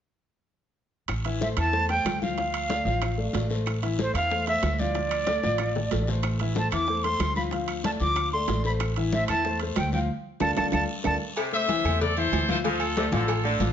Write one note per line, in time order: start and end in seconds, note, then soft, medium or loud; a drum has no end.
1.08 1.53 A1 medium
1.08 high bongo medium
1.08 high conga soft
1.08 high timbale medium
1.08 long guiro medium
1.08 claves medium
1.25 1.38 E3 medium
1.25 1.38 E4 medium
1.25 1.38 E5 medium
1.25 high conga soft
1.25 high timbale medium
1.41 1.54 A3 medium
1.41 1.54 A4 medium
1.41 1.54 C5 medium
1.41 1.48 E5 medium
1.41 high bongo medium
1.41 high conga medium
1.41 low timbale medium
1.41 short guiro medium
1.57 2.02 E2 medium
1.57 1.70 E3 medium
1.57 1.70 E4 medium
1.57 1.70 E5 medium
1.57 1.88 A5 loud
1.57 high bongo soft
1.57 high conga soft
1.57 high timbale loud
1.57 short guiro medium
1.57 claves medium
1.73 1.86 A3 medium
1.73 1.86 A4 medium
1.73 1.86 C5 medium
1.73 high bongo medium
1.73 high conga soft
1.73 long guiro medium
1.89 2.16 A3 medium
1.89 2.16 A4 medium
1.89 2.16 C5 medium
1.89 2.19 G5 loud
1.89 high bongo soft
1.89 high conga soft
1.89 high timbale medium
2.05 2.80 D2 medium
2.05 high bongo soft
2.05 low bongo medium
2.05 high conga medium
2.05 high timbale loud
2.05 low timbale medium
2.05 short guiro medium
2.05 claves medium
2.22 2.35 F3 medium
2.22 2.35 F4 medium
2.22 3.46 F5 medium
2.22 2.35 F5 medium
2.22 high bongo soft
2.22 high conga medium
2.22 short guiro medium
2.38 2.64 F3 medium
2.38 2.64 F4 medium
2.38 2.64 F5 medium
2.38 high bongo medium
2.38 high conga soft
2.38 high timbale medium
2.38 long guiro medium
2.54 high conga soft
2.54 high timbale medium
2.54 claves medium
2.70 2.83 A3 medium
2.70 2.84 A4 medium
2.70 2.84 D5 medium
2.70 high bongo medium
2.70 high conga medium
2.70 high timbale medium
2.70 low timbale medium
2.70 short guiro medium
2.85 3.30 A1 loud
2.85 3.12 F3 medium
2.85 3.12 F4 medium
2.85 3.12 F5 medium
2.85 high bongo soft
2.85 high conga soft
2.85 short guiro medium
3.02 high bongo medium
3.02 high conga soft
3.02 high timbale loud
3.02 long guiro medium
3.02 claves medium
3.18 3.31 A3 medium
3.18 3.31 A4 medium
3.18 3.31 D5 medium
3.18 high bongo soft
3.18 high conga soft
3.33 4.08 A1 medium
3.33 3.47 A3 medium
3.33 3.47 A4 medium
3.33 3.48 D5 medium
3.33 high bongo soft
3.33 low bongo medium
3.33 high conga soft
3.33 high timbale medium
3.33 low timbale medium
3.33 short guiro medium
3.50 3.77 A3 medium
3.50 3.77 A4 medium
3.50 3.77 C5 medium
3.50 high bongo soft
3.50 short guiro medium
3.66 high bongo medium
3.66 high conga soft
3.66 high timbale medium
3.66 long guiro medium
3.66 claves medium
3.83 3.96 E3 medium
3.83 3.96 E4 medium
3.83 3.96 E5 medium
3.83 high conga soft
3.83 high timbale medium
3.98 4.11 A3 medium
3.98 4.12 A4 medium
3.98 4.12 C5 medium
3.98 4.15 C5 medium
3.98 high bongo medium
3.98 high conga medium
3.98 low timbale medium
3.98 short guiro medium
4.14 4.59 E2 medium
4.14 4.28 E3 medium
4.14 4.28 E4 medium
4.14 4.28 E5 medium
4.14 4.45 F5 loud
4.14 high bongo soft
4.14 high conga soft
4.14 high timbale medium
4.14 short guiro medium
4.14 claves medium
4.31 4.44 A3 medium
4.31 4.44 A4 medium
4.31 4.45 C5 medium
4.31 high bongo medium
4.31 high conga soft
4.31 long guiro medium
4.47 4.73 A3 medium
4.47 4.74 A4 medium
4.47 4.74 C5 medium
4.47 4.81 E5 loud
4.47 high bongo soft
4.47 high conga soft
4.47 high timbale medium
4.62 5.38 D2 loud
4.62 high bongo soft
4.62 low bongo medium
4.62 high conga medium
4.62 high timbale loud
4.62 low timbale medium
4.62 short guiro medium
4.62 claves medium
4.79 4.93 F3 medium
4.79 4.93 F4 medium
4.79 6.08 D5 medium
4.79 4.93 F5 medium
4.79 high bongo soft
4.79 high conga medium
4.79 short guiro medium
4.95 5.22 F3 medium
4.95 5.22 F4 medium
4.95 5.22 F5 medium
4.95 high bongo medium
4.95 high conga soft
4.95 high timbale medium
4.95 long guiro medium
5.11 high conga soft
5.11 high timbale medium
5.11 claves medium
5.27 5.41 A3 medium
5.27 5.41 A4 medium
5.27 5.41 D5 medium
5.27 high bongo medium
5.27 high conga medium
5.27 high timbale medium
5.27 low timbale medium
5.27 short guiro medium
5.43 5.88 A1 medium
5.43 5.70 F3 medium
5.43 5.70 F4 medium
5.43 5.71 F5 medium
5.43 high bongo loud
5.43 high conga soft
5.43 short guiro medium
5.58 high bongo medium
5.58 high conga soft
5.58 high timbale medium
5.58 long guiro medium
5.58 claves medium
5.75 5.89 A3 medium
5.75 5.89 A4 medium
5.75 5.89 D5 medium
5.75 low bongo loud
5.75 high conga soft
5.91 6.66 A1 loud
5.91 6.05 A3 medium
5.91 6.05 A4 medium
5.91 6.06 D5 medium
5.91 high conga soft
5.91 high timbale medium
5.91 low timbale medium
5.91 short guiro medium
6.07 6.34 A3 medium
6.07 6.34 A4 medium
6.07 6.35 C5 medium
6.07 low bongo medium
6.07 short guiro medium
6.23 high bongo medium
6.23 high conga soft
6.23 high timbale loud
6.23 long guiro medium
6.23 claves medium
6.40 6.54 E3 medium
6.40 6.54 E4 medium
6.40 6.54 E5 medium
6.40 high conga soft
6.40 high timbale medium
6.55 6.69 A3 medium
6.55 6.69 A4 medium
6.55 6.70 C5 medium
6.55 6.72 A5 medium
6.55 high bongo medium
6.55 high conga medium
6.55 low timbale medium
6.55 short guiro medium
6.71 7.17 E2 medium
6.71 6.85 E3 medium
6.71 6.85 E4 medium
6.71 6.86 E5 medium
6.71 7.05 D6 loud
6.71 high bongo soft
6.71 high conga soft
6.71 high timbale medium
6.71 short guiro medium
6.71 claves medium
6.87 7.02 A3 medium
6.87 7.02 A4 medium
6.87 7.02 C5 medium
6.87 high bongo medium
6.87 high conga soft
6.87 long guiro medium
7.04 7.31 A3 medium
7.04 7.31 A4 medium
7.04 7.31 C5 medium
7.04 7.36 C6 medium
7.04 high bongo soft
7.04 high conga soft
7.04 high timbale medium
7.19 7.95 D2 loud
7.19 high bongo soft
7.19 low bongo medium
7.19 high conga medium
7.19 high timbale loud
7.19 low timbale medium
7.19 short guiro medium
7.19 claves medium
7.35 7.50 F3 medium
7.35 7.50 F4 medium
7.35 7.50 F5 medium
7.35 7.42 B5 medium
7.35 high bongo soft
7.35 high conga medium
7.35 short guiro medium
7.51 7.79 F3 medium
7.51 7.79 F4 medium
7.51 7.79 F5 medium
7.51 high bongo medium
7.51 high conga soft
7.51 high timbale medium
7.51 long guiro medium
7.68 high conga soft
7.68 high timbale medium
7.68 claves medium
7.84 7.98 A3 medium
7.84 7.98 A4 medium
7.84 7.98 D5 medium
7.84 7.91 A5 medium
7.84 high bongo medium
7.84 high conga medium
7.84 high timbale medium
7.84 low timbale medium
7.84 short guiro medium
8.00 8.45 D2 medium
8.00 8.27 F3 medium
8.00 8.27 F4 medium
8.00 8.28 F5 medium
8.00 8.30 D6 loud
8.00 high bongo soft
8.00 high conga soft
8.00 short guiro medium
8.16 high bongo medium
8.16 high conga soft
8.16 high timbale medium
8.16 long guiro medium
8.16 claves medium
8.33 8.46 A3 medium
8.33 8.47 A4 medium
8.33 8.47 D5 medium
8.33 8.63 C6 loud
8.33 high bongo soft
8.33 high conga soft
8.48 9.23 A1 loud
8.48 8.62 A3 medium
8.48 8.62 A4 medium
8.48 8.62 D5 medium
8.48 high bongo soft
8.48 low bongo medium
8.48 high conga soft
8.48 high timbale medium
8.48 low timbale medium
8.48 short guiro medium
8.64 8.91 A3 medium
8.64 8.91 A4 medium
8.64 8.91 C5 medium
8.64 8.72 B5 medium
8.64 high bongo soft
8.64 short guiro medium
8.80 high bongo medium
8.80 high conga soft
8.80 high timbale loud
8.80 long guiro medium
8.80 claves medium
8.96 9.10 E3 medium
8.96 9.10 E4 medium
8.96 9.10 E5 medium
8.96 high conga soft
8.96 high timbale medium
9.12 9.26 A3 medium
9.12 9.26 A4 medium
9.12 9.26 C5 medium
9.12 9.28 E5 loud
9.12 high bongo medium
9.12 high conga medium
9.12 low timbale medium
9.12 short guiro medium
9.28 9.73 E2 medium
9.28 9.42 E3 medium
9.28 9.42 E4 medium
9.28 9.43 E5 medium
9.28 9.58 A5 loud
9.28 high bongo soft
9.28 high conga soft
9.28 high timbale loud
9.28 short guiro medium
9.28 claves medium
9.45 9.58 A3 medium
9.45 9.58 A4 medium
9.45 9.59 C5 medium
9.45 high bongo medium
9.45 high conga soft
9.45 long guiro medium
9.59 9.88 A3 medium
9.59 9.88 A4 medium
9.59 9.88 C5 medium
9.59 high bongo soft
9.59 high conga soft
9.59 high timbale medium
9.76 10.06 D2 loud
9.76 9.92 G5 medium
9.76 high bongo soft
9.76 low bongo medium
9.76 high conga medium
9.76 high timbale loud
9.76 low timbale medium
9.76 short guiro medium
9.76 claves medium
9.92 10.07 F3 medium
9.92 10.07 F4 medium
9.92 10.07 F5 medium
9.92 9.99 G5 medium
9.92 high bongo soft
9.92 high conga medium
9.92 short guiro medium
10.40 10.53 D2 medium
10.40 10.51 F4 loud
10.40 10.52 A4 loud
10.40 10.51 D5 medium
10.40 10.51 A5 medium
10.40 low bongo loud
10.40 high conga medium
10.40 high timbale loud
10.40 long guiro loud
10.40 claves medium
10.56 10.69 D2 medium
10.56 10.68 F4 loud
10.56 10.67 A4 medium
10.56 10.68 D5 medium
10.56 10.67 A5 medium
10.56 low bongo loud
10.56 high conga loud
10.56 high timbale loud
10.56 long guiro medium
10.56 claves medium
10.72 10.85 D2 loud
10.72 10.83 F4 loud
10.72 10.83 A4 loud
10.72 10.83 D5 medium
10.72 10.84 A5 loud
10.72 low bongo medium
10.72 high conga medium
10.72 high timbale loud
10.72 long guiro loud
10.72 claves loud
11.04 11.17 D2 loud
11.04 11.15 F4 medium
11.04 11.14 A4 loud
11.04 11.15 D5 medium
11.04 11.16 A5 loud
11.04 low bongo medium
11.04 high conga medium
11.04 high timbale loud
11.04 long guiro loud
11.04 claves loud
11.37 12.07 C3 medium
11.37 cowbell loud
11.37 high conga soft
11.37 low agogo loud
11.37 long guiro medium
11.37 claves medium
11.52 11.66 A3 medium
11.52 11.66 A4 medium
11.52 11.66 C5 medium
11.52 11.98 C5 medium
11.52 11.98 E5 loud
11.52 cowbell medium
11.52 high conga soft
11.68 11.81 E3 medium
11.68 11.82 E4 medium
11.68 11.82 E5 medium
11.68 cowbell medium
11.68 high conga medium
11.68 low agogo medium
11.68 short guiro medium
11.84 12.29 E2 loud
11.84 12.11 A3 medium
11.84 12.11 A4 medium
11.84 12.11 C5 medium
11.84 high conga soft
11.84 low conga medium
11.84 low agogo loud
11.84 short guiro medium
11.84 claves medium
12.01 12.16 A4 medium
12.01 12.16 D5 loud
12.01 cowbell loud
12.01 high conga soft
12.01 low conga medium
12.01 long guiro medium
12.17 12.43 E3 medium
12.17 12.44 E4 loud
12.17 12.47 A4 medium
12.17 12.47 C5 loud
12.17 12.44 E5 loud
12.17 high conga soft
12.17 low agogo medium
12.32 13.07 D2 loud
12.32 cowbell medium
12.32 high conga soft
12.32 low timbale medium
12.32 low agogo loud
12.32 short guiro medium
12.32 claves medium
12.48 12.57 E3 medium
12.48 12.62 F3 medium
12.48 12.62 F4 medium
12.48 12.57 A4 medium
12.48 12.57 C5 loud
12.48 12.62 F5 medium
12.48 high conga medium
12.48 short guiro medium
12.64 12.81 F3 loud
12.64 12.91 F3 medium
12.64 12.91 F4 medium
12.64 13.10 F4 medium
12.64 13.10 A4 loud
12.64 12.92 F5 medium
12.64 cowbell loud
12.64 low agogo medium
12.64 long guiro medium
12.80 high conga soft
12.80 low agogo loud
12.80 claves medium
12.97 13.05 C3 medium
12.97 13.10 A3 medium
12.97 13.10 A4 medium
12.97 13.10 D5 medium
12.97 cowbell medium
12.97 high conga loud
12.97 short guiro medium
13.12 13.57 A1 loud
13.12 13.30 D3 medium
13.12 13.39 F3 medium
13.12 13.39 F4 medium
13.12 13.73 F4 medium
13.12 13.73 A4 medium
13.12 13.39 F5 medium
13.12 high conga loud
13.12 low agogo medium
13.12 short guiro medium
13.28 cowbell loud
13.28 high conga soft
13.28 low agogo loud
13.28 long guiro medium
13.28 claves medium
13.44 13.70 D3 medium
13.44 13.58 A3 medium
13.44 13.58 A4 medium
13.44 13.58 D5 medium
13.44 high conga soft
13.60 13.73 A1 loud
13.60 13.73 F3 medium
13.60 13.73 F4 medium
13.60 13.73 F5 medium
13.60 cowbell medium
13.60 high conga medium
13.60 low timbale medium
13.60 low agogo medium
13.60 short guiro medium